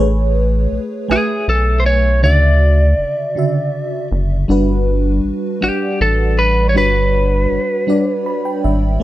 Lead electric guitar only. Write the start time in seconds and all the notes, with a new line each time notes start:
1.12 G#4
1.50 A4
1.80 C5
1.86 C#5
2.24 D5
5.64 G4
6.02 A4
6.39 B4
6.69 C#5
6.78 B4